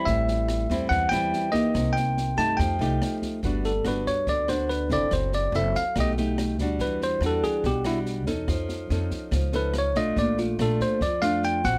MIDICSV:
0, 0, Header, 1, 5, 480
1, 0, Start_track
1, 0, Tempo, 421348
1, 64, Time_signature, 4, 2, 24, 8
1, 13425, End_track
2, 0, Start_track
2, 0, Title_t, "Tine electric piano"
2, 0, Program_c, 0, 4
2, 62, Note_on_c, 0, 76, 79
2, 977, Note_off_c, 0, 76, 0
2, 1015, Note_on_c, 0, 78, 86
2, 1242, Note_off_c, 0, 78, 0
2, 1242, Note_on_c, 0, 79, 86
2, 1730, Note_on_c, 0, 75, 84
2, 1747, Note_off_c, 0, 79, 0
2, 2195, Note_on_c, 0, 79, 81
2, 2231, Note_off_c, 0, 75, 0
2, 2704, Note_off_c, 0, 79, 0
2, 2709, Note_on_c, 0, 81, 81
2, 2927, Note_on_c, 0, 79, 73
2, 2929, Note_off_c, 0, 81, 0
2, 3609, Note_off_c, 0, 79, 0
2, 4162, Note_on_c, 0, 69, 61
2, 4385, Note_off_c, 0, 69, 0
2, 4419, Note_on_c, 0, 71, 61
2, 4634, Note_off_c, 0, 71, 0
2, 4641, Note_on_c, 0, 73, 72
2, 4865, Note_off_c, 0, 73, 0
2, 4889, Note_on_c, 0, 74, 77
2, 5109, Note_off_c, 0, 74, 0
2, 5115, Note_on_c, 0, 72, 66
2, 5342, Note_off_c, 0, 72, 0
2, 5348, Note_on_c, 0, 71, 66
2, 5578, Note_off_c, 0, 71, 0
2, 5614, Note_on_c, 0, 74, 83
2, 5831, Note_off_c, 0, 74, 0
2, 5846, Note_on_c, 0, 72, 63
2, 6067, Note_off_c, 0, 72, 0
2, 6088, Note_on_c, 0, 74, 72
2, 6308, Note_off_c, 0, 74, 0
2, 6330, Note_on_c, 0, 76, 74
2, 6549, Note_off_c, 0, 76, 0
2, 6565, Note_on_c, 0, 77, 79
2, 6787, Note_off_c, 0, 77, 0
2, 6840, Note_on_c, 0, 75, 77
2, 6966, Note_off_c, 0, 75, 0
2, 7762, Note_on_c, 0, 71, 67
2, 7985, Note_off_c, 0, 71, 0
2, 8014, Note_on_c, 0, 72, 79
2, 8232, Note_off_c, 0, 72, 0
2, 8274, Note_on_c, 0, 69, 71
2, 8472, Note_on_c, 0, 68, 75
2, 8482, Note_off_c, 0, 69, 0
2, 8700, Note_off_c, 0, 68, 0
2, 8730, Note_on_c, 0, 67, 70
2, 8950, Note_off_c, 0, 67, 0
2, 8959, Note_on_c, 0, 64, 78
2, 9098, Note_off_c, 0, 64, 0
2, 10887, Note_on_c, 0, 71, 66
2, 11108, Note_off_c, 0, 71, 0
2, 11147, Note_on_c, 0, 73, 72
2, 11356, Note_on_c, 0, 75, 83
2, 11359, Note_off_c, 0, 73, 0
2, 11582, Note_off_c, 0, 75, 0
2, 11605, Note_on_c, 0, 74, 70
2, 11828, Note_off_c, 0, 74, 0
2, 11835, Note_on_c, 0, 65, 51
2, 12063, Note_off_c, 0, 65, 0
2, 12094, Note_on_c, 0, 69, 68
2, 12312, Note_off_c, 0, 69, 0
2, 12325, Note_on_c, 0, 72, 73
2, 12548, Note_off_c, 0, 72, 0
2, 12557, Note_on_c, 0, 74, 71
2, 12779, Note_on_c, 0, 77, 84
2, 12783, Note_off_c, 0, 74, 0
2, 13014, Note_off_c, 0, 77, 0
2, 13039, Note_on_c, 0, 79, 86
2, 13265, Note_off_c, 0, 79, 0
2, 13270, Note_on_c, 0, 78, 84
2, 13425, Note_off_c, 0, 78, 0
2, 13425, End_track
3, 0, Start_track
3, 0, Title_t, "Nylon-string guitar"
3, 0, Program_c, 1, 24
3, 0, Note_on_c, 1, 55, 57
3, 0, Note_on_c, 1, 60, 60
3, 0, Note_on_c, 1, 64, 72
3, 82, Note_on_c, 1, 45, 53
3, 752, Note_off_c, 1, 55, 0
3, 754, Note_off_c, 1, 60, 0
3, 755, Note_off_c, 1, 64, 0
3, 806, Note_on_c, 1, 55, 61
3, 809, Note_on_c, 1, 60, 57
3, 815, Note_on_c, 1, 64, 63
3, 1009, Note_off_c, 1, 45, 0
3, 1032, Note_on_c, 1, 52, 59
3, 1237, Note_off_c, 1, 55, 0
3, 1237, Note_off_c, 1, 60, 0
3, 1239, Note_off_c, 1, 64, 0
3, 1266, Note_on_c, 1, 55, 54
3, 1269, Note_on_c, 1, 60, 57
3, 1278, Note_on_c, 1, 64, 69
3, 1706, Note_off_c, 1, 60, 0
3, 1707, Note_off_c, 1, 55, 0
3, 1712, Note_off_c, 1, 64, 0
3, 1734, Note_on_c, 1, 58, 61
3, 1739, Note_on_c, 1, 63, 54
3, 1743, Note_on_c, 1, 67, 65
3, 1963, Note_off_c, 1, 52, 0
3, 1984, Note_on_c, 1, 48, 53
3, 2660, Note_off_c, 1, 58, 0
3, 2662, Note_off_c, 1, 63, 0
3, 2664, Note_off_c, 1, 67, 0
3, 2701, Note_on_c, 1, 57, 62
3, 2708, Note_on_c, 1, 63, 56
3, 2715, Note_on_c, 1, 67, 64
3, 2919, Note_off_c, 1, 48, 0
3, 2951, Note_on_c, 1, 53, 54
3, 3143, Note_off_c, 1, 57, 0
3, 3147, Note_off_c, 1, 63, 0
3, 3150, Note_off_c, 1, 67, 0
3, 3196, Note_on_c, 1, 57, 56
3, 3203, Note_on_c, 1, 63, 59
3, 3207, Note_on_c, 1, 67, 60
3, 3871, Note_off_c, 1, 57, 0
3, 3873, Note_off_c, 1, 63, 0
3, 3876, Note_off_c, 1, 67, 0
3, 3883, Note_off_c, 1, 53, 0
3, 3916, Note_on_c, 1, 55, 51
3, 3921, Note_on_c, 1, 59, 49
3, 3929, Note_on_c, 1, 62, 48
3, 3934, Note_on_c, 1, 66, 52
3, 4220, Note_off_c, 1, 59, 0
3, 4224, Note_off_c, 1, 62, 0
3, 4227, Note_off_c, 1, 66, 0
3, 4390, Note_on_c, 1, 59, 52
3, 4394, Note_on_c, 1, 62, 53
3, 4401, Note_on_c, 1, 66, 61
3, 4846, Note_off_c, 1, 55, 0
3, 4881, Note_on_c, 1, 50, 53
3, 5068, Note_off_c, 1, 59, 0
3, 5070, Note_off_c, 1, 62, 0
3, 5072, Note_off_c, 1, 66, 0
3, 5115, Note_on_c, 1, 59, 54
3, 5123, Note_on_c, 1, 62, 56
3, 5124, Note_on_c, 1, 66, 60
3, 5550, Note_off_c, 1, 59, 0
3, 5552, Note_off_c, 1, 62, 0
3, 5555, Note_off_c, 1, 66, 0
3, 5586, Note_on_c, 1, 60, 57
3, 5594, Note_on_c, 1, 64, 58
3, 5602, Note_on_c, 1, 69, 58
3, 5808, Note_off_c, 1, 50, 0
3, 5833, Note_on_c, 1, 54, 49
3, 6265, Note_off_c, 1, 60, 0
3, 6270, Note_off_c, 1, 64, 0
3, 6274, Note_off_c, 1, 69, 0
3, 6317, Note_on_c, 1, 60, 53
3, 6323, Note_on_c, 1, 64, 56
3, 6330, Note_on_c, 1, 69, 59
3, 6632, Note_off_c, 1, 60, 0
3, 6635, Note_off_c, 1, 64, 0
3, 6639, Note_off_c, 1, 69, 0
3, 6763, Note_off_c, 1, 54, 0
3, 6796, Note_on_c, 1, 57, 55
3, 6806, Note_on_c, 1, 63, 52
3, 6807, Note_on_c, 1, 47, 54
3, 6812, Note_on_c, 1, 67, 65
3, 6991, Note_off_c, 1, 57, 0
3, 6995, Note_off_c, 1, 63, 0
3, 6999, Note_off_c, 1, 67, 0
3, 7039, Note_on_c, 1, 57, 55
3, 7047, Note_on_c, 1, 63, 56
3, 7049, Note_on_c, 1, 67, 68
3, 7472, Note_off_c, 1, 57, 0
3, 7476, Note_off_c, 1, 63, 0
3, 7476, Note_off_c, 1, 67, 0
3, 7524, Note_on_c, 1, 55, 64
3, 7531, Note_on_c, 1, 62, 57
3, 7541, Note_on_c, 1, 66, 65
3, 7731, Note_off_c, 1, 47, 0
3, 7758, Note_on_c, 1, 52, 56
3, 8195, Note_off_c, 1, 55, 0
3, 8198, Note_off_c, 1, 62, 0
3, 8203, Note_off_c, 1, 66, 0
3, 8238, Note_on_c, 1, 55, 55
3, 8241, Note_on_c, 1, 62, 53
3, 8249, Note_on_c, 1, 66, 60
3, 8686, Note_off_c, 1, 52, 0
3, 8714, Note_on_c, 1, 47, 54
3, 8912, Note_off_c, 1, 55, 0
3, 8912, Note_off_c, 1, 62, 0
3, 8917, Note_off_c, 1, 66, 0
3, 8945, Note_on_c, 1, 55, 63
3, 8950, Note_on_c, 1, 62, 58
3, 8955, Note_on_c, 1, 66, 59
3, 9386, Note_off_c, 1, 55, 0
3, 9388, Note_off_c, 1, 62, 0
3, 9389, Note_off_c, 1, 66, 0
3, 9421, Note_on_c, 1, 61, 58
3, 9426, Note_on_c, 1, 69, 63
3, 9427, Note_on_c, 1, 63, 56
3, 9645, Note_off_c, 1, 47, 0
3, 9659, Note_on_c, 1, 53, 54
3, 10104, Note_off_c, 1, 61, 0
3, 10105, Note_off_c, 1, 69, 0
3, 10106, Note_off_c, 1, 63, 0
3, 10150, Note_on_c, 1, 61, 56
3, 10158, Note_on_c, 1, 63, 52
3, 10159, Note_on_c, 1, 69, 58
3, 10597, Note_off_c, 1, 53, 0
3, 10624, Note_on_c, 1, 53, 52
3, 10829, Note_off_c, 1, 61, 0
3, 10831, Note_off_c, 1, 69, 0
3, 10833, Note_off_c, 1, 63, 0
3, 10857, Note_on_c, 1, 61, 55
3, 10864, Note_on_c, 1, 63, 52
3, 10867, Note_on_c, 1, 69, 67
3, 11302, Note_off_c, 1, 61, 0
3, 11304, Note_off_c, 1, 63, 0
3, 11307, Note_off_c, 1, 69, 0
3, 11341, Note_off_c, 1, 53, 0
3, 11345, Note_on_c, 1, 57, 62
3, 11351, Note_on_c, 1, 62, 53
3, 11356, Note_on_c, 1, 65, 62
3, 11583, Note_on_c, 1, 46, 55
3, 12026, Note_off_c, 1, 57, 0
3, 12030, Note_off_c, 1, 62, 0
3, 12030, Note_off_c, 1, 65, 0
3, 12072, Note_on_c, 1, 57, 56
3, 12084, Note_on_c, 1, 62, 54
3, 12087, Note_on_c, 1, 65, 57
3, 12519, Note_off_c, 1, 46, 0
3, 12545, Note_off_c, 1, 57, 0
3, 12551, Note_off_c, 1, 62, 0
3, 12551, Note_off_c, 1, 65, 0
3, 12557, Note_on_c, 1, 53, 55
3, 12781, Note_on_c, 1, 57, 60
3, 12787, Note_on_c, 1, 62, 63
3, 12798, Note_on_c, 1, 65, 61
3, 13224, Note_off_c, 1, 57, 0
3, 13227, Note_off_c, 1, 62, 0
3, 13233, Note_off_c, 1, 65, 0
3, 13261, Note_on_c, 1, 60, 58
3, 13267, Note_on_c, 1, 66, 69
3, 13425, Note_off_c, 1, 53, 0
3, 13425, Note_off_c, 1, 60, 0
3, 13425, Note_off_c, 1, 66, 0
3, 13425, End_track
4, 0, Start_track
4, 0, Title_t, "Upright bass"
4, 0, Program_c, 2, 32
4, 73, Note_on_c, 2, 33, 79
4, 742, Note_off_c, 2, 33, 0
4, 794, Note_on_c, 2, 40, 78
4, 1012, Note_off_c, 2, 40, 0
4, 1028, Note_on_c, 2, 40, 88
4, 1249, Note_off_c, 2, 40, 0
4, 1269, Note_on_c, 2, 40, 94
4, 1489, Note_off_c, 2, 40, 0
4, 1994, Note_on_c, 2, 36, 78
4, 2663, Note_off_c, 2, 36, 0
4, 2710, Note_on_c, 2, 43, 78
4, 2930, Note_off_c, 2, 43, 0
4, 2952, Note_on_c, 2, 41, 84
4, 3171, Note_off_c, 2, 41, 0
4, 3180, Note_on_c, 2, 36, 91
4, 3404, Note_off_c, 2, 36, 0
4, 3905, Note_on_c, 2, 31, 73
4, 4350, Note_off_c, 2, 31, 0
4, 4388, Note_on_c, 2, 31, 88
4, 4609, Note_off_c, 2, 31, 0
4, 4863, Note_on_c, 2, 38, 81
4, 5577, Note_on_c, 2, 31, 77
4, 5594, Note_off_c, 2, 38, 0
4, 5803, Note_off_c, 2, 31, 0
4, 5819, Note_on_c, 2, 30, 76
4, 6267, Note_off_c, 2, 30, 0
4, 6291, Note_on_c, 2, 30, 91
4, 6519, Note_off_c, 2, 30, 0
4, 6789, Note_on_c, 2, 35, 81
4, 7504, Note_off_c, 2, 35, 0
4, 7504, Note_on_c, 2, 38, 82
4, 7726, Note_off_c, 2, 38, 0
4, 7738, Note_on_c, 2, 40, 74
4, 8186, Note_off_c, 2, 40, 0
4, 8209, Note_on_c, 2, 40, 94
4, 8438, Note_off_c, 2, 40, 0
4, 8704, Note_on_c, 2, 35, 87
4, 9420, Note_off_c, 2, 35, 0
4, 9420, Note_on_c, 2, 40, 80
4, 9645, Note_off_c, 2, 40, 0
4, 9660, Note_on_c, 2, 41, 72
4, 10108, Note_off_c, 2, 41, 0
4, 10143, Note_on_c, 2, 41, 92
4, 10366, Note_off_c, 2, 41, 0
4, 10610, Note_on_c, 2, 37, 87
4, 11336, Note_off_c, 2, 37, 0
4, 11336, Note_on_c, 2, 35, 72
4, 11563, Note_off_c, 2, 35, 0
4, 11582, Note_on_c, 2, 34, 79
4, 12029, Note_off_c, 2, 34, 0
4, 12063, Note_on_c, 2, 34, 94
4, 12286, Note_off_c, 2, 34, 0
4, 12544, Note_on_c, 2, 41, 78
4, 13267, Note_on_c, 2, 34, 79
4, 13284, Note_off_c, 2, 41, 0
4, 13425, Note_off_c, 2, 34, 0
4, 13425, End_track
5, 0, Start_track
5, 0, Title_t, "Drums"
5, 74, Note_on_c, 9, 36, 52
5, 74, Note_on_c, 9, 38, 22
5, 188, Note_off_c, 9, 36, 0
5, 188, Note_off_c, 9, 38, 0
5, 318, Note_on_c, 9, 38, 24
5, 432, Note_off_c, 9, 38, 0
5, 553, Note_on_c, 9, 37, 55
5, 553, Note_on_c, 9, 38, 22
5, 667, Note_off_c, 9, 37, 0
5, 667, Note_off_c, 9, 38, 0
5, 794, Note_on_c, 9, 36, 23
5, 798, Note_on_c, 9, 38, 24
5, 908, Note_off_c, 9, 36, 0
5, 912, Note_off_c, 9, 38, 0
5, 1034, Note_on_c, 9, 36, 56
5, 1037, Note_on_c, 9, 38, 22
5, 1148, Note_off_c, 9, 36, 0
5, 1150, Note_off_c, 9, 38, 0
5, 1276, Note_on_c, 9, 37, 54
5, 1276, Note_on_c, 9, 38, 22
5, 1390, Note_off_c, 9, 37, 0
5, 1390, Note_off_c, 9, 38, 0
5, 1518, Note_on_c, 9, 38, 25
5, 1632, Note_off_c, 9, 38, 0
5, 1753, Note_on_c, 9, 36, 24
5, 1757, Note_on_c, 9, 38, 24
5, 1867, Note_off_c, 9, 36, 0
5, 1871, Note_off_c, 9, 38, 0
5, 1992, Note_on_c, 9, 36, 56
5, 1992, Note_on_c, 9, 37, 58
5, 1992, Note_on_c, 9, 38, 22
5, 2106, Note_off_c, 9, 36, 0
5, 2106, Note_off_c, 9, 37, 0
5, 2106, Note_off_c, 9, 38, 0
5, 2235, Note_on_c, 9, 38, 23
5, 2349, Note_off_c, 9, 38, 0
5, 2475, Note_on_c, 9, 38, 21
5, 2589, Note_off_c, 9, 38, 0
5, 2712, Note_on_c, 9, 36, 24
5, 2714, Note_on_c, 9, 38, 25
5, 2826, Note_off_c, 9, 36, 0
5, 2828, Note_off_c, 9, 38, 0
5, 2953, Note_on_c, 9, 36, 56
5, 2956, Note_on_c, 9, 37, 52
5, 2956, Note_on_c, 9, 38, 22
5, 3067, Note_off_c, 9, 36, 0
5, 3070, Note_off_c, 9, 37, 0
5, 3070, Note_off_c, 9, 38, 0
5, 3198, Note_on_c, 9, 38, 24
5, 3312, Note_off_c, 9, 38, 0
5, 3437, Note_on_c, 9, 37, 60
5, 3437, Note_on_c, 9, 38, 24
5, 3551, Note_off_c, 9, 37, 0
5, 3551, Note_off_c, 9, 38, 0
5, 3669, Note_on_c, 9, 36, 23
5, 3670, Note_on_c, 9, 38, 24
5, 3783, Note_off_c, 9, 36, 0
5, 3784, Note_off_c, 9, 38, 0
5, 3903, Note_on_c, 9, 38, 22
5, 3908, Note_on_c, 9, 36, 54
5, 4017, Note_off_c, 9, 38, 0
5, 4021, Note_off_c, 9, 36, 0
5, 4148, Note_on_c, 9, 38, 23
5, 4262, Note_off_c, 9, 38, 0
5, 4381, Note_on_c, 9, 37, 52
5, 4381, Note_on_c, 9, 38, 22
5, 4495, Note_off_c, 9, 37, 0
5, 4495, Note_off_c, 9, 38, 0
5, 4625, Note_on_c, 9, 36, 24
5, 4631, Note_on_c, 9, 38, 21
5, 4739, Note_off_c, 9, 36, 0
5, 4745, Note_off_c, 9, 38, 0
5, 4862, Note_on_c, 9, 38, 21
5, 4865, Note_on_c, 9, 36, 53
5, 4976, Note_off_c, 9, 38, 0
5, 4978, Note_off_c, 9, 36, 0
5, 5106, Note_on_c, 9, 37, 50
5, 5106, Note_on_c, 9, 38, 22
5, 5220, Note_off_c, 9, 37, 0
5, 5220, Note_off_c, 9, 38, 0
5, 5351, Note_on_c, 9, 38, 23
5, 5465, Note_off_c, 9, 38, 0
5, 5584, Note_on_c, 9, 36, 24
5, 5588, Note_on_c, 9, 38, 23
5, 5698, Note_off_c, 9, 36, 0
5, 5702, Note_off_c, 9, 38, 0
5, 5823, Note_on_c, 9, 36, 58
5, 5824, Note_on_c, 9, 37, 53
5, 5824, Note_on_c, 9, 38, 21
5, 5937, Note_off_c, 9, 36, 0
5, 5938, Note_off_c, 9, 37, 0
5, 5938, Note_off_c, 9, 38, 0
5, 6067, Note_on_c, 9, 38, 24
5, 6181, Note_off_c, 9, 38, 0
5, 6311, Note_on_c, 9, 38, 20
5, 6425, Note_off_c, 9, 38, 0
5, 6547, Note_on_c, 9, 36, 22
5, 6551, Note_on_c, 9, 38, 23
5, 6661, Note_off_c, 9, 36, 0
5, 6665, Note_off_c, 9, 38, 0
5, 6786, Note_on_c, 9, 37, 56
5, 6786, Note_on_c, 9, 38, 23
5, 6787, Note_on_c, 9, 36, 52
5, 6900, Note_off_c, 9, 37, 0
5, 6900, Note_off_c, 9, 38, 0
5, 6901, Note_off_c, 9, 36, 0
5, 7031, Note_on_c, 9, 38, 21
5, 7145, Note_off_c, 9, 38, 0
5, 7269, Note_on_c, 9, 37, 60
5, 7269, Note_on_c, 9, 38, 25
5, 7383, Note_off_c, 9, 37, 0
5, 7383, Note_off_c, 9, 38, 0
5, 7503, Note_on_c, 9, 38, 23
5, 7504, Note_on_c, 9, 36, 22
5, 7616, Note_off_c, 9, 38, 0
5, 7618, Note_off_c, 9, 36, 0
5, 7739, Note_on_c, 9, 38, 21
5, 7745, Note_on_c, 9, 36, 50
5, 7853, Note_off_c, 9, 38, 0
5, 7859, Note_off_c, 9, 36, 0
5, 7994, Note_on_c, 9, 38, 23
5, 8108, Note_off_c, 9, 38, 0
5, 8224, Note_on_c, 9, 37, 53
5, 8224, Note_on_c, 9, 38, 21
5, 8338, Note_off_c, 9, 37, 0
5, 8338, Note_off_c, 9, 38, 0
5, 8464, Note_on_c, 9, 36, 23
5, 8467, Note_on_c, 9, 38, 24
5, 8578, Note_off_c, 9, 36, 0
5, 8581, Note_off_c, 9, 38, 0
5, 8702, Note_on_c, 9, 36, 55
5, 8705, Note_on_c, 9, 38, 22
5, 8816, Note_off_c, 9, 36, 0
5, 8818, Note_off_c, 9, 38, 0
5, 8937, Note_on_c, 9, 37, 55
5, 8937, Note_on_c, 9, 38, 23
5, 9051, Note_off_c, 9, 37, 0
5, 9051, Note_off_c, 9, 38, 0
5, 9180, Note_on_c, 9, 38, 24
5, 9294, Note_off_c, 9, 38, 0
5, 9416, Note_on_c, 9, 38, 24
5, 9420, Note_on_c, 9, 36, 24
5, 9530, Note_off_c, 9, 38, 0
5, 9534, Note_off_c, 9, 36, 0
5, 9660, Note_on_c, 9, 36, 53
5, 9661, Note_on_c, 9, 37, 53
5, 9661, Note_on_c, 9, 38, 22
5, 9774, Note_off_c, 9, 36, 0
5, 9775, Note_off_c, 9, 37, 0
5, 9775, Note_off_c, 9, 38, 0
5, 9898, Note_on_c, 9, 38, 24
5, 10012, Note_off_c, 9, 38, 0
5, 10140, Note_on_c, 9, 38, 22
5, 10254, Note_off_c, 9, 38, 0
5, 10375, Note_on_c, 9, 38, 23
5, 10378, Note_on_c, 9, 36, 25
5, 10489, Note_off_c, 9, 38, 0
5, 10491, Note_off_c, 9, 36, 0
5, 10617, Note_on_c, 9, 36, 56
5, 10618, Note_on_c, 9, 37, 56
5, 10618, Note_on_c, 9, 38, 22
5, 10731, Note_off_c, 9, 36, 0
5, 10731, Note_off_c, 9, 37, 0
5, 10731, Note_off_c, 9, 38, 0
5, 10851, Note_on_c, 9, 38, 22
5, 10965, Note_off_c, 9, 38, 0
5, 11091, Note_on_c, 9, 37, 60
5, 11091, Note_on_c, 9, 38, 24
5, 11205, Note_off_c, 9, 37, 0
5, 11205, Note_off_c, 9, 38, 0
5, 11335, Note_on_c, 9, 38, 23
5, 11338, Note_on_c, 9, 36, 22
5, 11449, Note_off_c, 9, 38, 0
5, 11452, Note_off_c, 9, 36, 0
5, 11579, Note_on_c, 9, 36, 59
5, 11580, Note_on_c, 9, 38, 21
5, 11693, Note_off_c, 9, 36, 0
5, 11694, Note_off_c, 9, 38, 0
5, 11822, Note_on_c, 9, 38, 24
5, 11936, Note_off_c, 9, 38, 0
5, 12068, Note_on_c, 9, 37, 53
5, 12068, Note_on_c, 9, 38, 21
5, 12181, Note_off_c, 9, 37, 0
5, 12181, Note_off_c, 9, 38, 0
5, 12303, Note_on_c, 9, 36, 23
5, 12306, Note_on_c, 9, 38, 23
5, 12417, Note_off_c, 9, 36, 0
5, 12420, Note_off_c, 9, 38, 0
5, 12543, Note_on_c, 9, 36, 55
5, 12544, Note_on_c, 9, 38, 23
5, 12657, Note_off_c, 9, 36, 0
5, 12658, Note_off_c, 9, 38, 0
5, 12784, Note_on_c, 9, 37, 56
5, 12784, Note_on_c, 9, 38, 22
5, 12898, Note_off_c, 9, 37, 0
5, 12898, Note_off_c, 9, 38, 0
5, 13022, Note_on_c, 9, 38, 23
5, 13136, Note_off_c, 9, 38, 0
5, 13265, Note_on_c, 9, 36, 23
5, 13265, Note_on_c, 9, 38, 24
5, 13379, Note_off_c, 9, 36, 0
5, 13379, Note_off_c, 9, 38, 0
5, 13425, End_track
0, 0, End_of_file